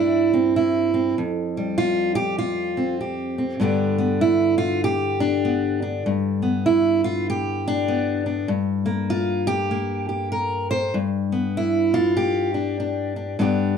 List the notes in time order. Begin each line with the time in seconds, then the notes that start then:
Already playing: G2 A#3 D4 E4
0.33 C4
0.56 E4
0.94 C4
1.18 F2
1.57 G3
1.78 F4
2.15 G4
2.38 F4
2.77 C4
3.01 G4
3.38 C4
3.60 G2 D3 B3 D4 G4
3.98 B3
4.21 E4
4.58 F4
4.84 G4
5.20 D4
5.45 B3
5.82 D4
6.06 G2
6.42 B3
6.66 E4
7.04 F4
7.30 G4
7.68 D4
7.88 B3
8.26 D4
8.48 G2
8.86 A#3
9.10 F4
9.47 G4
9.71 A#3
10.09 G4
10.32 A#4
10.71 C5
10.94 G2
11.32 B3
11.57 E4
11.94 F4
12.17 G4
12.54 D4
12.80 D4
13.16 D4
13.39 G2 B3 D4 G4